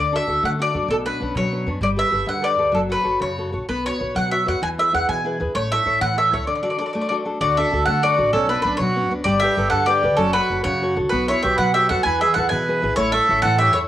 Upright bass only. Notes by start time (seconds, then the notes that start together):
Already playing: D2
0.28 D2
0.43 D3
0.74 F#2
0.89 B1
1.20 B1
1.35 B2
1.66 F#2
1.81 G1
2.12 G1
2.27 G2
2.59 D2
2.73 F#1
3.05 F#1
3.21 F#2
3.53 A#1
3.69 B1
4.01 B1
4.16 B2
4.47 F#2
4.62 E2
4.94 E2
5.09 E3
5.40 E2
5.55 A1
5.86 A1
6.01 A2
6.33 C#2
7.41 D2
7.73 D2
7.87 D3
8.19 A1
8.33 B1
8.65 B1
8.79 B2
9.10 D2
9.25 G1
9.57 G1
9.72 G2
10.03 D2
10.18 F#1
10.50 F#1
10.65 F#2
10.97 C#2
11.12 B1
11.44 B1
11.58 B2
11.90 F#2
12.05 E2
12.36 E2
12.51 E3
12.83 B1
12.97 A1
13.29 A1
13.43 A2
13.74 E2